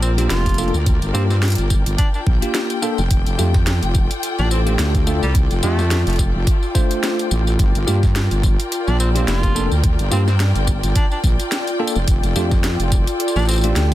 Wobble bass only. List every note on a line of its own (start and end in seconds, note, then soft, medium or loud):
0.00 0.28 A#1 loud
0.30 0.72 F1 loud
0.74 0.99 D2 medium
1.02 1.12 G1 loud
1.14 1.56 G2 loud
1.58 1.84 G1 loud
1.86 1.97 G1 loud
2.27 2.40 A#1 loud
2.98 3.09 F1 loud
3.11 3.24 F1 loud
3.26 3.37 F1 loud
3.39 3.80 F2 loud
3.83 4.08 F1 medium
4.39 4.77 A1 loud
4.79 5.20 D2 medium
5.23 5.48 C2 loud
5.51 5.61 F1 loud
5.63 6.04 F2 loud
6.07 6.32 F1 loud
6.35 6.45 F1 loud
7.31 7.57 A1 loud
7.59 7.72 G1 medium
7.75 7.85 G1 loud
7.87 8.29 G2 loud
8.31 8.57 G1 medium
8.87 9.26 A#1 loud
9.28 9.69 F1 loud
9.71 9.97 D2 loud
9.99 10.10 G1 loud
10.12 10.53 G2 loud
10.55 10.81 G1 loud
10.83 10.94 G1 loud
11.24 11.37 A#1 loud
11.96 12.06 F1 loud
12.08 12.21 F1 loud
12.24 12.34 F1 loud
12.36 12.77 F2 medium
12.79 13.05 F1 medium
13.36 13.74 A1 loud
13.76 13.94 D2 loud